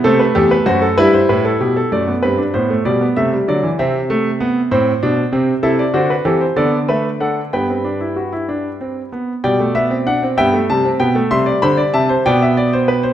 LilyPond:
<<
  \new Staff \with { instrumentName = "Grand piano" } { \time 6/8 \key a \dorian \tempo 4. = 64 << { c''16 b'16 a'16 b'16 c''16 a'16 b'16 c''16 b'16 a'16 g'16 a'16 | d''8 b'8 c''8 d''8 e''8 d''8 | e''4. c''4. | \key g \major e''16 d''16 c''16 b'16 a'16 c''16 d''8 e''8 fis''8 |
g''2~ g''8 r8 | g''8 e''8 fis''8 g''8 a''8 g''8 | c'''8 b''8 a''8 g''4. | } \\ { a'8 g'8 fis'8 e'4. | r2. | r2. | a'8 fis'8 g'8 a'8 b'8 a'8 |
b'2~ b'8 r8 | d''4. e''4. | e''16 d''16 c''16 d''16 e''16 c''16 d''16 e''16 d''16 c''16 b'16 c''16 | } >> }
  \new Staff \with { instrumentName = "Grand piano" } { \time 6/8 \key a \dorian << { a4. g4. | a16 b16 c'16 d'16 b16 a16 g16 b16 a16 g16 fis16 e16 | c'8 a8 b8 c'8 d'8 c'8 | \key g \major e'8 d'8 c'8 b8 a8 d'8 |
b16 c'16 d'16 e'16 fis'16 e'16 d'8 c'8 b8 | g16 a16 b16 c'16 d'16 c'16 b16 a16 g16 c'16 b16 a16 | g4. b4. | } \\ { c8 e,8 fis,8 g,8 a,8 b,8 | fis,8 g,8 a,8 b,8 c8 d8 | c4. a,8 b,8 c8 | c8 d8 e8 d4. |
g,2~ g,8 r8 | b,4. g,8 c8 b,8 | c8 d8 c8 b,4. | } >> }
>>